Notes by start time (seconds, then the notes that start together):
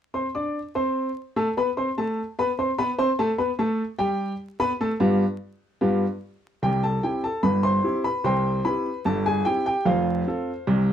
0.14 C4 C5 C6
0.35 D4 D5 D6
0.75 C4 C5 C6
1.36 A3 A4 A5
1.57 B3 B4 B5
1.77 C4 C5 C6
1.98 A3 A4 A5
2.39 B3 B4 B5
2.59 C4 C5 C6
2.78 B3 B4 B5
2.98 C4 C5 C6
3.19 A3 A4 A5
3.38 B3 B4 B5
3.59 A3 A4 A5
3.99 G3 G4 G5
4.60 B3 B4 B5
4.81 A3 A4 A5
5.00 G2 B3 F4 G4
5.81 G2 B3 F4 G4
6.62 C2 C3 G4 G5
6.83 A4 A5
7.03 C4 E4 G4 G5
7.24 A4 A5
7.43 G1 G2 B4 B5
7.63 C5 C6
7.84 C4 E4 G4
8.04 B4 B5
8.24 C2 C3 C5 G5 C6
8.65 C4 E4 G4 B4 B5
9.05 G1 G2 A4 A5
9.26 G#4 G#5
9.45 C4 E4 G4 G5
9.66 G4 G5
9.85 F1 F2 F4 C5 F5
10.27 C4 F4 A4
10.67 C2 C3